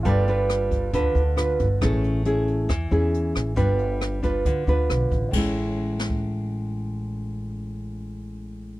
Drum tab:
CC |----------------|----------------|----------------|x---------------|
HH |x-x-x-x-x-x-x-x-|x-x-x-x-x-x-x-x-|x-x-x-x-x-x-x-x-|----------------|
SD |----r-------r---|r-------r-----r-|----r-------r---|------o---------|
BD |o-----o-o-----o-|o-------o-------|o-----o-o-----o-|o------o--------|

CC |----------------|
HH |----------------|
SD |----------------|
BD |----------------|